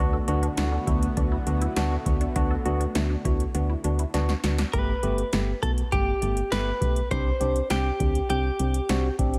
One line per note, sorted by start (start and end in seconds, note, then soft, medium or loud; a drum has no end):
0.00 0.19 D2 loud
0.00 4.70 D3 medium
0.00 4.70 A3 medium
0.00 0.16 B3 loud
0.00 4.70 B3 medium
0.00 0.11 D4 medium
0.00 0.16 D4 loud
0.00 0.16 F#4 loud
0.00 4.70 F#4 medium
0.13 0.26 A4 medium
0.28 0.49 D2 loud
0.28 0.46 B3 loud
0.28 0.46 D4 loud
0.28 0.46 F#4 loud
0.28 0.41 F#4 medium
0.28 closed hi-hat medium
0.43 0.55 D4 medium
0.43 closed hi-hat soft
0.57 0.78 D2 loud
0.57 0.76 B3 medium
0.57 0.76 D4 medium
0.57 0.70 E4 medium
0.57 0.76 F#4 loud
0.57 snare loud
0.57 closed hi-hat medium
0.72 0.85 D4 medium
0.87 1.08 D2 loud
0.87 1.05 B3 medium
0.87 1.05 D4 medium
0.87 1.12 E4 medium
0.87 1.05 F#4 medium
0.87 kick medium
0.87 closed hi-hat medium
1.03 closed hi-hat medium
1.17 1.38 D2 loud
1.17 1.35 B3 medium
1.17 1.30 D4 medium
1.17 1.35 D4 medium
1.17 1.35 F#4 medium
1.17 kick medium
1.17 closed hi-hat medium
1.32 1.44 E4 medium
1.47 1.68 D2 loud
1.47 1.65 B3 medium
1.47 1.65 D4 medium
1.47 1.59 D4 medium
1.47 1.65 F#4 medium
1.47 closed hi-hat medium
1.62 1.74 E4 medium
1.62 closed hi-hat medium
1.76 1.97 D2 loud
1.76 1.94 B3 loud
1.76 1.94 D4 loud
1.76 1.89 D4 medium
1.76 1.94 F#4 loud
1.76 snare loud
1.76 closed hi-hat medium
1.91 2.16 F#4 medium
2.06 2.27 D2 loud
2.06 2.24 B3 medium
2.06 2.24 D4 medium
2.06 2.24 F#4 medium
2.06 kick medium
2.06 closed hi-hat medium
2.21 2.34 D4 medium
2.21 closed hi-hat soft
2.36 2.57 D2 loud
2.36 2.54 B3 loud
2.36 2.48 D4 medium
2.36 2.54 D4 loud
2.36 2.54 F#4 loud
2.36 kick loud
2.36 closed hi-hat medium
2.51 2.63 A4 medium
2.65 2.86 D2 loud
2.65 2.84 B3 loud
2.65 2.84 D4 loud
2.65 2.78 F#4 medium
2.65 2.84 F#4 loud
2.65 closed hi-hat medium
2.80 2.93 D4 medium
2.80 closed hi-hat soft
2.95 3.16 D2 loud
2.95 3.13 B3 medium
2.95 3.13 D4 medium
2.95 3.08 E4 medium
2.95 3.13 F#4 loud
2.95 snare loud
2.95 closed hi-hat medium
3.10 3.23 D4 medium
3.25 3.46 D2 medium
3.25 3.43 B3 medium
3.25 3.43 D4 medium
3.25 3.50 E4 medium
3.25 3.43 F#4 medium
3.25 kick medium
3.25 closed hi-hat medium
3.40 closed hi-hat medium
3.54 3.75 D2 loud
3.54 3.73 B3 medium
3.54 3.73 D4 medium
3.54 3.67 D4 medium
3.54 3.73 F#4 medium
3.54 closed hi-hat medium
3.70 3.82 E4 medium
3.84 4.05 D2 loud
3.84 4.02 B3 medium
3.84 4.02 D4 medium
3.84 3.97 D4 medium
3.84 4.02 F#4 medium
3.84 closed hi-hat medium
3.99 4.12 E4 medium
3.99 closed hi-hat medium
4.14 4.35 D2 loud
4.14 4.32 B3 loud
4.14 4.32 D4 loud
4.14 4.27 D4 medium
4.14 4.32 F#4 loud
4.14 snare medium
4.14 closed hi-hat medium
4.29 4.54 F#4 medium
4.29 snare medium
4.44 4.65 D2 loud
4.44 4.62 B3 medium
4.44 4.62 D4 medium
4.44 4.62 F#4 medium
4.44 snare medium
4.44 closed hi-hat medium
4.58 4.71 D4 medium
4.58 snare medium
4.58 closed hi-hat medium
4.73 4.94 G1 loud
4.73 4.91 A3 medium
4.73 4.91 B3 medium
4.73 4.91 G4 loud
4.73 5.62 B4 medium
4.73 kick loud
4.73 closed hi-hat medium
5.03 5.24 G1 medium
5.03 5.21 A3 medium
5.03 5.21 B3 medium
5.03 5.21 G4 loud
5.03 closed hi-hat medium
5.18 closed hi-hat soft
5.33 5.54 G1 loud
5.33 5.51 A3 medium
5.33 5.51 B3 medium
5.33 5.51 G4 medium
5.33 snare loud
5.33 closed hi-hat medium
5.63 5.83 B1 medium
5.63 5.81 A3 medium
5.63 5.81 B3 medium
5.63 5.81 F#4 medium
5.63 5.71 A4 medium
5.63 kick medium
5.63 closed hi-hat medium
5.78 closed hi-hat medium
5.92 6.13 G1 loud
5.92 6.10 A3 medium
5.92 6.10 B3 medium
5.92 6.10 G4 medium
5.92 6.53 G4 medium
5.92 kick medium
5.92 closed hi-hat medium
6.22 6.43 G1 loud
6.22 6.40 A3 medium
6.22 6.40 B3 medium
6.22 6.40 G4 medium
6.22 closed hi-hat medium
6.37 closed hi-hat medium
6.51 6.72 G1 loud
6.51 6.70 A3 medium
6.51 6.70 B3 medium
6.51 6.70 G4 loud
6.51 7.11 B4 medium
6.51 snare loud
6.51 closed hi-hat medium
6.81 7.02 B1 medium
6.81 6.99 A3 medium
6.81 6.99 B3 medium
6.81 6.99 G4 medium
6.81 kick medium
6.81 closed hi-hat medium
6.96 closed hi-hat medium
7.11 7.32 C2 loud
7.11 7.29 C4 medium
7.11 7.29 D4 medium
7.11 7.29 G4 loud
7.11 7.70 C5 loud
7.11 kick loud
7.11 closed hi-hat medium
7.40 7.62 C2 medium
7.40 7.59 C4 medium
7.40 7.59 D4 medium
7.40 7.59 G4 loud
7.40 closed hi-hat medium
7.56 closed hi-hat soft
7.70 7.91 C2 loud
7.70 7.88 C4 medium
7.70 7.88 D4 medium
7.70 7.88 G4 medium
7.70 8.29 G4 medium
7.70 snare loud
7.70 closed hi-hat medium
8.00 8.21 D2 loud
8.00 8.18 C4 medium
8.00 8.18 D4 medium
8.00 8.18 G4 medium
8.00 kick medium
8.00 closed hi-hat medium
8.15 closed hi-hat medium
8.30 8.51 C2 loud
8.30 8.48 C4 medium
8.30 8.48 D4 medium
8.30 8.48 G4 medium
8.30 9.15 G4 medium
8.30 closed hi-hat medium
8.59 8.80 C2 loud
8.59 8.78 C4 medium
8.59 8.78 D4 medium
8.59 8.78 G4 medium
8.59 closed hi-hat medium
8.74 closed hi-hat medium
8.89 9.10 C2 medium
8.89 9.07 C4 medium
8.89 9.07 D4 medium
8.89 9.07 F#4 loud
8.89 snare loud
8.89 closed hi-hat medium
9.19 9.39 A1 medium
9.19 9.37 C4 medium
9.19 9.37 D4 medium
9.19 9.37 G4 medium
9.19 kick medium
9.19 closed hi-hat medium
9.34 closed hi-hat medium